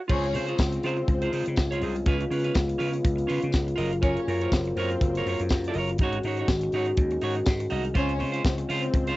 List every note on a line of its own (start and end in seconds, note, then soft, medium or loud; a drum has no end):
0.08 0.35 C#2 loud
0.08 5.95 C#3 medium
0.08 3.75 G#3 medium
0.08 2.05 C4 medium
0.08 0.30 C#4 loud
0.08 0.25 F4 medium
0.08 5.95 F4 medium
0.08 0.26 G#4 medium
0.08 0.26 C5 medium
0.08 0.29 C#5 loud
0.08 kick loud
0.08 crash medium
0.24 closed hi-hat soft
0.33 0.52 C#3 loud
0.33 0.47 F4 medium
0.33 0.47 G#4 medium
0.33 0.46 C5 medium
0.33 open hi-hat medium
0.47 0.81 C4 medium
0.47 0.57 F4 medium
0.47 0.59 G#4 medium
0.47 0.58 C5 medium
0.47 0.81 C5 medium
0.47 closed hi-hat soft
0.58 0.77 C#2 loud
0.58 muted clean electric guitar stroke soft
0.58 kick loud
0.58 snare loud
0.58 tambourine loud
0.72 muted clean electric guitar stroke medium
0.72 closed hi-hat medium
0.83 1.02 C#3 loud
0.83 1.30 C4 medium
0.83 1.00 F4 medium
0.83 0.98 G#4 loud
0.83 1.30 C5 loud
0.83 0.97 C5 loud
0.83 open hi-hat medium
0.97 muted clean electric guitar stroke medium
0.97 closed hi-hat soft
1.08 1.27 C#2 loud
1.08 muted clean electric guitar stroke soft
1.08 kick loud
1.08 closed hi-hat medium
1.22 1.31 F4 medium
1.22 1.32 G#4 medium
1.22 1.33 C5 medium
1.22 closed hi-hat soft
1.32 1.43 C#3 medium
1.32 1.46 F4 medium
1.32 1.47 G#4 medium
1.32 1.45 C5 medium
1.32 open hi-hat medium
1.46 1.55 C#3 medium
1.46 muted clean electric guitar stroke soft
1.46 closed hi-hat medium
1.56 1.76 C#2 loud
1.56 muted clean electric guitar stroke soft
1.56 kick loud
1.56 snare loud
1.56 tambourine medium
1.71 1.81 F4 medium
1.71 1.82 G#4 medium
1.71 1.83 C#5 medium
1.71 closed hi-hat soft
1.82 2.00 C2 medium
1.82 1.96 F4 medium
1.82 1.96 G#4 medium
1.82 1.95 C5 medium
1.82 open hi-hat medium
1.96 muted clean electric guitar stroke soft
1.96 closed hi-hat soft
2.06 2.25 C#2 loud
2.06 3.78 B3 medium
2.06 2.23 C#4 medium
2.06 2.24 F4 loud
2.06 2.24 B4 loud
2.06 kick loud
2.06 closed hi-hat medium
2.20 closed hi-hat soft
2.31 2.49 C#3 medium
2.31 2.44 C#4 medium
2.31 2.44 F4 medium
2.31 2.43 B4 medium
2.31 open hi-hat medium
2.44 2.53 C#4 medium
2.44 2.54 F4 medium
2.44 2.55 B4 medium
2.44 closed hi-hat medium
2.55 2.74 C#2 medium
2.55 muted clean electric guitar stroke soft
2.55 kick loud
2.55 snare loud
2.55 tambourine loud
2.68 muted clean electric guitar stroke soft
2.68 closed hi-hat soft
2.78 2.99 C#3 loud
2.78 2.96 C#4 medium
2.78 2.92 F4 medium
2.78 2.91 B4 loud
2.78 open hi-hat medium
2.92 muted clean electric guitar stroke medium
2.92 closed hi-hat soft
3.05 3.23 C#2 loud
3.05 kick loud
3.05 closed hi-hat medium
3.16 muted clean electric guitar stroke medium
3.16 closed hi-hat medium
3.27 3.40 C#3 medium
3.27 3.45 C#4 medium
3.27 3.42 F4 medium
3.27 3.41 B4 medium
3.27 open hi-hat medium
3.42 3.51 C#3 loud
3.42 muted clean electric guitar stroke soft
3.42 closed hi-hat soft
3.52 3.72 C#2 loud
3.52 muted clean electric guitar stroke soft
3.52 kick loud
3.52 snare loud
3.52 tambourine loud
3.67 muted clean electric guitar stroke soft
3.67 closed hi-hat soft
3.76 4.15 F#1 loud
3.76 5.97 F#3 medium
3.76 5.98 A#3 medium
3.76 3.94 F4 medium
3.76 3.92 A#4 medium
3.76 3.92 D#5 medium
3.76 open hi-hat medium
3.93 muted clean electric guitar stroke soft
3.93 closed hi-hat soft
4.02 4.22 C#4 loud
4.02 4.19 F4 medium
4.02 4.20 A#4 medium
4.02 4.22 C#5 loud
4.02 4.20 C#5 medium
4.02 kick loud
4.02 closed hi-hat medium
4.17 closed hi-hat soft
4.28 4.46 F#2 loud
4.28 4.42 F4 medium
4.28 4.42 A#4 medium
4.28 4.40 C#5 medium
4.28 open hi-hat medium
4.41 4.74 C4 medium
4.41 4.52 F4 medium
4.41 4.52 A#4 medium
4.41 4.74 C5 medium
4.41 4.52 C#5 medium
4.41 closed hi-hat medium
4.52 4.70 F#1 medium
4.52 muted clean electric guitar stroke soft
4.52 kick loud
4.52 snare loud
4.52 tambourine loud
4.65 muted clean electric guitar stroke medium
4.65 closed hi-hat soft
4.75 4.95 F#2 loud
4.75 5.22 C4 medium
4.75 4.94 F4 medium
4.75 4.92 A#4 loud
4.75 5.22 C5 medium
4.75 open hi-hat medium
4.79 4.90 C#5 loud
4.90 muted clean electric guitar stroke medium
4.90 closed hi-hat soft
5.01 5.20 F#1 medium
5.01 muted clean electric guitar stroke soft
5.01 kick loud
5.01 closed hi-hat medium
5.15 5.27 F4 medium
5.15 5.27 A#4 medium
5.15 5.28 C#5 medium
5.15 closed hi-hat medium
5.26 5.36 F#2 loud
5.26 5.40 F4 medium
5.26 5.41 A#4 medium
5.26 5.41 C#5 medium
5.26 open hi-hat medium
5.40 5.48 F#2 medium
5.40 muted clean electric guitar stroke medium
5.40 closed hi-hat soft
5.49 5.69 F#2 loud
5.49 muted clean electric guitar stroke soft
5.49 kick loud
5.49 snare loud
5.49 tambourine loud
5.64 5.79 D#5 medium
5.64 closed hi-hat soft
5.69 5.76 F4 medium
5.69 5.77 A#4 medium
5.74 5.93 F#1 medium
5.74 5.90 F4 medium
5.74 open hi-hat medium
5.78 5.90 A#4 medium
5.78 5.90 C#5 medium
5.89 muted clean electric guitar stroke soft
5.89 closed hi-hat soft
5.98 6.18 G#1 loud
5.98 7.94 D#3 medium
5.98 9.17 G#3 medium
5.98 7.94 C#4 medium
5.98 6.17 D#4 medium
5.98 7.94 F#4 medium
5.98 kick loud
5.98 closed hi-hat medium
6.03 6.18 F#4 loud
6.03 6.18 C#5 medium
6.13 closed hi-hat soft
6.23 6.42 G#2 loud
6.23 6.38 D#4 medium
6.23 6.39 F#4 medium
6.23 open hi-hat medium
6.27 6.38 C#5 medium
6.37 6.49 F#4 medium
6.37 6.49 C#5 medium
6.37 closed hi-hat soft
6.41 6.48 D#4 medium
6.48 6.67 G#1 loud
6.48 kick loud
6.48 snare loud
6.48 tambourine loud
6.61 muted clean electric guitar stroke medium
6.61 closed hi-hat medium
6.72 6.91 G#2 loud
6.72 6.90 D#4 medium
6.72 6.88 F#4 medium
6.72 6.87 C#5 medium
6.72 open hi-hat medium
6.86 muted clean electric guitar stroke medium
6.86 closed hi-hat soft
6.97 7.16 D#2 medium
6.97 kick loud
6.97 closed hi-hat medium
7.11 muted clean electric guitar stroke medium
7.11 closed hi-hat soft
7.21 7.40 G#2 medium
7.21 7.38 D#4 medium
7.21 7.37 F#4 medium
7.21 7.35 C#5 loud
7.21 open hi-hat medium
7.35 muted clean electric guitar stroke soft
7.35 closed hi-hat soft
7.46 7.65 G#2 loud
7.46 muted clean electric guitar stroke soft
7.46 kick loud
7.46 snare loud
7.46 tambourine loud
7.60 muted clean electric guitar stroke medium
7.60 closed hi-hat medium
7.70 7.90 C2 medium
7.70 7.87 D#4 medium
7.70 7.84 F#4 medium
7.70 7.84 D#5 medium
7.70 open hi-hat medium
7.85 muted clean electric guitar stroke soft
7.85 closed hi-hat soft
7.94 8.22 C#2 loud
7.94 9.17 C#3 medium
7.94 9.17 C4 medium
7.94 8.11 C#4 medium
7.94 8.16 C#4 loud
7.94 9.17 F4 medium
7.94 8.12 F4 medium
7.94 8.12 C5 loud
7.94 8.16 C#5 loud
7.94 kick loud
7.94 closed hi-hat medium
8.09 closed hi-hat soft
8.19 8.39 C#3 loud
8.19 8.33 C#4 medium
8.19 8.32 F4 medium
8.19 8.31 C5 medium
8.19 open hi-hat medium
8.32 8.67 C4 medium
8.32 8.42 C#4 medium
8.32 8.43 F4 medium
8.32 8.43 C5 medium
8.32 8.67 C5 medium
8.32 closed hi-hat medium
8.44 8.63 C#2 loud
8.44 muted clean electric guitar stroke soft
8.44 kick loud
8.44 snare loud
8.44 tambourine medium
8.58 muted clean electric guitar stroke soft
8.58 closed hi-hat medium
8.69 8.88 C#3 loud
8.69 9.15 C4 medium
8.69 8.85 C#4 medium
8.69 8.84 F4 medium
8.69 9.15 C5 medium
8.69 8.82 C5 loud
8.69 open hi-hat medium
8.83 muted clean electric guitar stroke soft
8.83 closed hi-hat soft
8.94 9.12 C#2 loud
8.94 muted clean electric guitar stroke soft
8.94 kick loud
8.94 closed hi-hat medium
9.07 9.17 C#4 medium
9.07 9.17 F4 medium
9.07 9.17 C5 loud
9.07 closed hi-hat soft